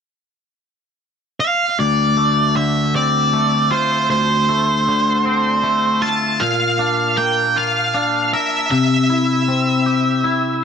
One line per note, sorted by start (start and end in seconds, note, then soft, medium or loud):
1.40 1.79 F5 medium
1.79 3.72 D2 soft
1.79 2.56 D5 medium
2.17 3.33 A3 soft
2.56 4.49 D3 soft
2.56 2.95 E5 medium
2.95 4.87 C4 soft
2.95 3.75 D5 medium
3.33 4.49 A3 soft
3.71 5.64 F4 soft
3.71 4.08 C5 medium
4.10 6.02 D2 soft
4.10 6.08 C5 medium
4.49 5.62 A3 soft
4.88 6.42 D3 soft
5.25 6.41 C4 soft
5.63 6.41 A3 soft
6.02 6.41 F4 medium
6.02 6.42 A5 medium
6.40 8.33 A#2 soft
6.40 7.20 F5 medium
6.79 7.93 D4 soft
7.17 8.71 A#3 medium
7.17 7.57 G5 medium
7.56 8.72 F4 soft
7.56 8.33 F5 medium
7.94 8.71 D4 soft
8.33 8.72 A#4 soft
8.33 8.70 E5 medium
8.71 10.64 C3 soft
8.71 10.64 E5 medium
9.10 10.23 E4 soft
9.48 10.64 C4 soft
9.86 10.64 G4 soft
10.24 10.64 E4 soft